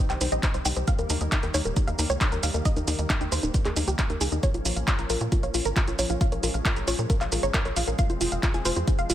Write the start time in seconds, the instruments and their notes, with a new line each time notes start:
Already playing: analog synth pad D#3 G3 C4
0.10 analog synth bass C2, synth arpeggio sound D#5, synth pluck G5, clap, closed hi-hat, shaker
0.21 analog synth bass C2, synth arpeggio sound D#4, synth pluck C5, open hi-hat, shaker
0.32 analog synth bass A#1, synth pluck D#5, synth arpeggio sound G5, closed hi-hat, shaker
0.43 synth arpeggio sound D#4, synth pluck C5, kick, clap, closed hi-hat, shaker
0.54 analog synth bass C2, synth arpeggio sound C5, synth pluck C5, closed hi-hat, shaker
0.65 analog synth bass C2, synth arpeggio sound D#4, synth pluck G5, open hi-hat, shaker
0.76 analog synth bass C2, synth pluck C5, synth arpeggio sound D#5, closed hi-hat, shaker
0.87 analog synth pad D#3 A#3, synth arpeggio sound D#4, synth pluck F5, kick, closed hi-hat, shaker
0.99 analog synth bass D#2, synth arpeggio sound A#4, synth pluck A#4, closed hi-hat, shaker
1.10 analog synth bass D#2, synth arpeggio sound D#4, synth pluck A#4, open hi-hat, shaker
1.21 analog synth bass D#2, synth arpeggio sound D#5, closed hi-hat, shaker
1.32 synth arpeggio sound D#4, synth pluck A#4, kick, clap, closed hi-hat, shaker
1.43 analog synth bass D#2, synth pluck A#4, synth arpeggio sound G5, closed hi-hat, shaker
1.54 analog synth bass D#2, synth arpeggio sound D#4, synth pluck C#5, open hi-hat, shaker
1.65 analog synth bass D#1, synth pluck A#4, synth arpeggio sound A#4, closed hi-hat, shaker
1.76 synth arpeggio sound D#4, synth pluck A#4, kick, closed hi-hat, shaker
1.87 analog synth bass D#2, synth arpeggio sound D#5, synth pluck F5, closed hi-hat, shaker
1.99 analog synth bass D#2, synth arpeggio sound D#4, synth pluck A#4, open hi-hat, shaker
2.10 analog synth bass C#2, synth pluck C#5, synth arpeggio sound G5, closed hi-hat, shaker
2.21 synth arpeggio sound D#4, synth pluck A#4, kick, clap, closed hi-hat, shaker
2.32 analog synth bass D#2, synth arpeggio sound A#4, synth pluck A#4, closed hi-hat, shaker
2.43 analog synth bass D#2, synth arpeggio sound D#4, synth pluck F5, open hi-hat, shaker
2.54 analog synth bass D#2, synth pluck A#4, synth arpeggio sound D#5, closed hi-hat, shaker
2.65 synth arpeggio sound D#4, synth pluck D#5, kick, closed hi-hat, shaker
2.76 analog synth bass D#2, synth pluck D#4, synth arpeggio sound A#4, closed hi-hat, shaker
2.88 analog synth bass D#2, synth arpeggio sound D#4, synth pluck D#4, open hi-hat, shaker
2.99 analog synth bass D#2, synth arpeggio sound D#5, closed hi-hat, shaker
3.10 synth arpeggio sound D#4, synth pluck D#4, kick, clap, closed hi-hat, shaker
3.21 analog synth bass D#2, synth pluck D#4, synth arpeggio sound G5, closed hi-hat, shaker
3.32 analog synth bass D#2, synth arpeggio sound D#4, synth pluck C5, open hi-hat, shaker
3.43 analog synth bass D#1, synth pluck D#4, synth arpeggio sound A#4, closed hi-hat, shaker
3.54 synth arpeggio sound D#4, synth pluck D#4, kick, closed hi-hat, shaker
3.65 analog synth bass D#2, synth pluck G#4, synth arpeggio sound D#5, clap, closed hi-hat, shaker
3.76 analog synth bass D#2, synth arpeggio sound D#4, synth pluck D#4, open hi-hat, shaker
3.88 analog synth bass C#2, synth pluck G4, synth arpeggio sound G5, closed hi-hat, shaker
3.99 synth arpeggio sound D#4, synth pluck D#4, kick, clap, closed hi-hat, shaker
4.10 analog synth bass D#2, synth pluck D#4, synth arpeggio sound A#4, closed hi-hat, shaker
4.21 analog synth bass C#2, synth arpeggio sound D#4, synth pluck G#4, open hi-hat, shaker
4.32 analog synth bass D#2, synth pluck D#4, synth arpeggio sound D#5, closed hi-hat, shaker
4.43 analog synth pad F3 C#4, synth arpeggio sound F4, synth pluck C#5, kick, closed hi-hat, shaker
4.54 analog synth bass A#1, synth pluck F4, synth arpeggio sound C#5, closed hi-hat, shaker
4.65 analog synth bass A#1, synth arpeggio sound F4, synth pluck F4, open hi-hat, shaker
4.76 analog synth bass A#1, synth arpeggio sound F5, closed hi-hat, shaker
4.87 synth arpeggio sound F4, synth pluck F4, kick, clap, closed hi-hat, shaker
4.99 analog synth bass A#1, synth pluck F4, synth arpeggio sound A#5, closed hi-hat, shaker
5.10 analog synth bass A#1, synth arpeggio sound F4, synth pluck A#4, open hi-hat, shaker
5.21 analog synth bass A#2, synth pluck F4, synth arpeggio sound C#5, closed hi-hat, shaker
5.32 synth arpeggio sound F4, synth pluck F4, kick, closed hi-hat, shaker
5.43 analog synth bass A#1, synth pluck C#5, synth arpeggio sound F5, closed hi-hat, shaker
5.54 analog synth bass A#1, synth arpeggio sound F4, synth pluck F4, open hi-hat, shaker
5.65 analog synth bass G#1, synth pluck A#4, synth arpeggio sound A#5, closed hi-hat, shaker
5.76 synth arpeggio sound F4, synth pluck F4, kick, clap, closed hi-hat, shaker
5.88 analog synth bass A#1, synth pluck F4, synth arpeggio sound C#5, closed hi-hat, shaker
5.99 analog synth bass A#1, synth arpeggio sound F4, synth pluck C#5, open hi-hat, shaker
6.10 analog synth bass A#1, synth pluck F4, synth arpeggio sound F5, closed hi-hat, shaker
6.21 analog synth pad G#3, synth arpeggio sound F4, synth pluck F5, kick, closed hi-hat, shaker
6.32 analog synth bass A#1, synth pluck A#4, synth arpeggio sound C#5, closed hi-hat, shaker
6.43 analog synth bass A#1, synth arpeggio sound F4, synth pluck A#4, open hi-hat, shaker
6.54 analog synth bass A#1, synth arpeggio sound F5, shaker
6.65 synth arpeggio sound F4, synth pluck A#4, kick, clap, closed hi-hat, shaker
6.76 analog synth bass A#1, synth pluck A#4, synth arpeggio sound A#5, closed hi-hat, shaker
6.88 analog synth bass A#1, synth arpeggio sound F4, synth pluck C#5, open hi-hat, shaker
6.99 analog synth bass A#2, synth pluck A#4, synth arpeggio sound C#5, shaker
7.10 synth arpeggio sound F4, synth pluck A#4, kick, closed hi-hat, shaker
7.21 analog synth bass A#1, synth arpeggio sound F5, synth pluck F5, clap, closed hi-hat, shaker
7.32 analog synth bass A#1, synth arpeggio sound F4, synth pluck A#4, open hi-hat, shaker
7.43 analog synth bass G#1, synth pluck C#5, synth arpeggio sound A#5, closed hi-hat, shaker
7.54 synth arpeggio sound F4, synth pluck A#4, kick, clap, closed hi-hat, shaker
7.65 analog synth bass A#1, synth pluck A#4, synth arpeggio sound C#5, closed hi-hat, shaker
7.76 analog synth bass A#1, synth arpeggio sound F4, synth pluck F5, open hi-hat, shaker
7.88 analog synth bass A#1, synth pluck A#4, synth arpeggio sound F5, closed hi-hat, shaker
7.99 analog synth pad F3 C4, synth arpeggio sound F4, synth pluck F5, kick, closed hi-hat, shaker
8.10 analog synth bass F1, synth pluck F4, synth arpeggio sound C5, closed hi-hat, shaker
8.21 analog synth bass F1, synth pluck F4, synth arpeggio sound F4, open hi-hat, shaker
8.32 analog synth bass F1, synth arpeggio sound F5, closed hi-hat, shaker
8.43 synth pluck F4, synth arpeggio sound F4, kick, clap, closed hi-hat, shaker
8.54 analog synth bass F1, synth pluck F4, synth arpeggio sound G#5, closed hi-hat, shaker
8.65 analog synth bass F1, synth arpeggio sound F4, synth pluck C5, open hi-hat, shaker
8.76 analog synth bass F2, synth pluck F4, synth arpeggio sound C5, closed hi-hat, shaker
8.87 synth arpeggio sound F4, synth pluck F4, kick, closed hi-hat, shaker
8.99 analog synth bass F1, synth pluck F5, synth arpeggio sound F5, closed hi-hat, shaker
9.10 analog synth bass F1, synth pluck F4, synth arpeggio sound F4, open hi-hat, shaker